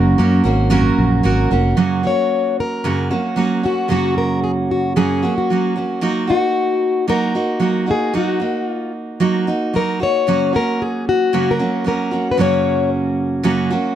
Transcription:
Already playing: fingered electric bass F#1, steel-string acoustic guitar F#2 F#3 A#3 C#4 F#4 A#4
0.18 fingered electric bass F#2, steel-string acoustic guitar A#3 C#4 F#4 A#4
0.44 fingered electric bass G#1, steel-string acoustic guitar A#3 C#4 F#4 A#4
0.70 steel-string acoustic guitar F#2 F#3 A#3 C#4 F#4 A#4
0.98 fingered electric bass A#1
1.23 fingered electric bass G#1, steel-string acoustic guitar A#3 C#4 F#4 A#4
1.51 fingered electric bass F1, steel-string acoustic guitar A#3 C#4 F#4 A#4
1.77 steel-string acoustic guitar F#2 C#3 F#3 A#3 C#4 F#4
2.03 steel-string acoustic guitar F#3 A#3 C#4 F#4 C#5
2.60 steel-string acoustic guitar A#4
2.84 steel-string acoustic guitar F#2 C#3 F#3 A#3 C#4 F#4
3.11 steel-string acoustic guitar F#3 A#3 C#4 F#4
3.36 steel-string acoustic guitar F#3 A#3 C#4 F#4
3.63 steel-string acoustic guitar F#3 A#3 C#4 F#4
3.88 steel-string acoustic guitar F#2 C#3 F#3 A#3 C#4 F#4
4.18 steel-string acoustic guitar A#4
4.44 steel-string acoustic guitar G#4
4.71 steel-string acoustic guitar F#4
4.96 steel-string acoustic guitar F#2 C#3 F#3 A#3 C#4 F#4 G#4
5.23 steel-string acoustic guitar F#3 A#3 C#4 F#4
5.38 steel-string acoustic guitar F#4
5.50 steel-string acoustic guitar F#3 A#3 C#4 F#4
5.76 steel-string acoustic guitar F#3 A#3 C#4 F#4
6.01 steel-string acoustic guitar F#3 A#3 D#4 F#4
6.27 steel-string acoustic guitar A#3 D#4 F#4
7.08 steel-string acoustic guitar F#3 A#3 D#4 F#4 A#4
7.35 steel-string acoustic guitar A#3 D#4 F#4
7.60 steel-string acoustic guitar F#3 A#3 D#4 F#4
7.86 steel-string acoustic guitar A#3 D#4 F#4
7.91 steel-string acoustic guitar G#4
8.13 steel-string acoustic guitar F#3 A#3 D#4 F#4
8.40 steel-string acoustic guitar A#3 D#4 F#4
8.68 steel-string acoustic guitar F4
9.20 steel-string acoustic guitar F#3 A#3 D#4 F#4
9.47 steel-string acoustic guitar A#3 D#4 F#4
9.74 steel-string acoustic guitar F#3 A#3 D#4 F#4 A#4
10.00 steel-string acoustic guitar A#3 D#4 F#4 C#5
10.27 steel-string acoustic guitar F#2 C#3 F#3 A#3 C#4 F#4
10.53 steel-string acoustic guitar F#3 A#3 C#4 F#4 A#4
10.82 steel-string acoustic guitar G#4
11.09 steel-string acoustic guitar F#4
11.33 steel-string acoustic guitar F#2 C#3 F#3 A#3 C#4 F#4
11.51 steel-string acoustic guitar A#4
11.59 steel-string acoustic guitar F#3 A#3 C#4 F#4
11.84 steel-string acoustic guitar F#3 A#3 C#4 F#4 A#4
12.11 steel-string acoustic guitar F#3 A#3 C#4 F#4
12.31 steel-string acoustic guitar B4
12.37 steel-string acoustic guitar F#2 C#3 F#3 A#3 C#4 F#4 C#5
13.43 steel-string acoustic guitar F#2 C#3 F#3 A#3 C#4 F#4
13.70 steel-string acoustic guitar F#3 A#3 C#4 F#4

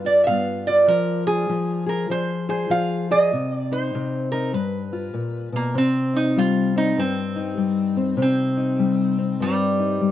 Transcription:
Already playing: steel-string acoustic guitar G2 B3 B4
0.05 steel-string acoustic guitar F4, resonator guitar played with a steel bar D5
0.24 steel-string acoustic guitar G2, resonator guitar played with a steel bar E5 F5
0.28 steel-string acoustic guitar B3
0.67 steel-string acoustic guitar F4, resonator guitar played with a steel bar D5
0.88 steel-string acoustic guitar F3, resonator guitar played with a steel bar A#4
1.27 steel-string acoustic guitar F4, resonator guitar played with a steel bar G#4
1.49 steel-string acoustic guitar F3 F4
1.86 steel-string acoustic guitar G#4, resonator guitar played with a steel bar A#4
2.10 steel-string acoustic guitar F3 G#4, resonator guitar played with a steel bar C5
2.49 steel-string acoustic guitar G#4, resonator guitar played with a steel bar C5
2.70 steel-string acoustic guitar F3 F4, resonator guitar played with a steel bar F5
3.11 steel-string acoustic guitar G#4, resonator guitar played with a steel bar D#5
3.33 steel-string acoustic guitar C3
3.55 resonator guitar played with a steel bar D5
3.72 steel-string acoustic guitar D#4, resonator guitar played with a steel bar C5
3.94 steel-string acoustic guitar C3 C4
4.32 steel-string acoustic guitar D#4, resonator guitar played with a steel bar A#4
4.53 steel-string acoustic guitar G2, resonator guitar played with a steel bar B4
4.93 steel-string acoustic guitar F4
5.14 steel-string acoustic guitar A#2
5.52 steel-string acoustic guitar B2, resonator guitar played with a steel bar A#3
5.74 steel-string acoustic guitar C3 C4, resonator guitar played with a steel bar C4
6.14 steel-string acoustic guitar D#4, resonator guitar played with a steel bar D#4
6.37 steel-string acoustic guitar G3, resonator guitar played with a steel bar F4
6.76 steel-string acoustic guitar C4, resonator guitar played with a steel bar D#4
6.97 steel-string acoustic guitar G2, resonator guitar played with a steel bar C4
7.36 steel-string acoustic guitar D#4
7.57 steel-string acoustic guitar G3
7.97 steel-string acoustic guitar C4
8.17 steel-string acoustic guitar C3 C4
8.22 resonator guitar played with a steel bar C4
8.57 steel-string acoustic guitar D#4
8.79 steel-string acoustic guitar G3
9.18 steel-string acoustic guitar C4
9.40 steel-string acoustic guitar G2, resonator guitar played with a steel bar G3
9.79 steel-string acoustic guitar D#4
10.01 steel-string acoustic guitar G3

